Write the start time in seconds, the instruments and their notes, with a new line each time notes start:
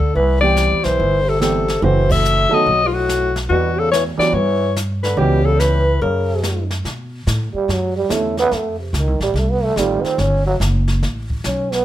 Already playing: upright bass D2, trombone D3, alto saxophone A4
0.00 kick
0.14 upright bass C2, trombone E3, alto saxophone B4, brush sweep
0.41 upright piano E3 G3 B3 C4 G4, trombone G3, alto saxophone D5
0.57 snare, hi-hat pedal
0.71 upright bass E2
0.84 upright bass B1, trombone E3, alto saxophone C5, snare
0.99 upright bass G1, brush sweep
1.26 trombone C3, alto saxophone A4
1.40 trombone C3, upright piano E3 G3 B3 C4 G4, alto saxophone A4, snare, hi-hat pedal
1.68 snare
1.81 upright bass F#1, trombone E3, upright piano E3 F#3 A3 C4 F#4, alto saxophone C5, brush sweep
2.10 trombone A3, alto saxophone E5, kick, crash
2.25 hi-hat pedal
2.49 upright piano D#3 F#3 A3 B3 A4, trombone F#3, muted upright bass stroke
2.54 alto saxophone D#5
2.66 upright bass B1, brush sweep
2.85 trombone G2, alto saxophone F4
2.92 trombone A2, alto saxophone F#4
3.09 snare, hi-hat pedal
3.36 snare
3.49 upright bass E2, trombone B2, upright piano E3 G3 B3 D4 F#4, alto saxophone F#4, brush sweep
3.78 trombone C#3, alto saxophone A4
3.92 trombone E3, alto saxophone C#5, snare, hi-hat pedal
4.18 upright piano E3 G3 B3 D4 F#4, trombone F#3, alto saxophone D5, muted upright bass stroke, snare
4.32 upright bass G2, trombone E3, alto saxophone C#5, brush sweep
4.76 snare, hi-hat pedal
5.03 trombone D3, alto saxophone B4, snare
5.17 upright bass C#2, trombone B2, upright piano E3 G3 B3 C#4 G4, alto saxophone G4, brush sweep
5.45 trombone C#3, alto saxophone A4
5.60 trombone E3, alto saxophone B4, snare, hi-hat pedal
6.01 upright bass F#2, trombone C#3, alto saxophone A#4, brush sweep
6.43 snare, hi-hat pedal
6.71 snare
6.84 upright bass B2, brush sweep, snare
7.27 upright bass A2, snare, hi-hat pedal
7.54 trombone G3, muted upright bass stroke
7.68 upright bass F#2, brush sweep, snare
7.72 trombone F#3
7.96 trombone G3
8.09 upright bass E2, upright piano D3 A3 B3 C#4 E4, snare, hi-hat pedal
8.14 trombone A3
8.37 trombone B3, snare
8.51 upright bass F2, trombone A3, brush sweep, snare
8.80 trombone C3
8.93 upright bass C#2, snare, hi-hat pedal
8.98 trombone D#3
9.07 upright bass C2
9.20 upright bass A1, trombone G3, snare
9.34 upright bass C2, brush sweep, snare
9.38 trombone A3
9.51 trombone B3
9.63 trombone A3
9.76 upright bass A1, upright piano D#3 G3 A3 C4 F4, trombone G3, snare, hi-hat pedal
10.02 trombone C4, muted upright bass stroke, snare
10.18 upright bass G1, trombone C#4, brush sweep, snare
10.47 trombone F#3
10.60 upright bass F#1, snare, hi-hat pedal
10.88 snare
11.03 upright bass A1, brush sweep, snare
11.30 kick
11.44 upright bass B1, trombone C#4, snare, hi-hat pedal
11.72 trombone B3, snare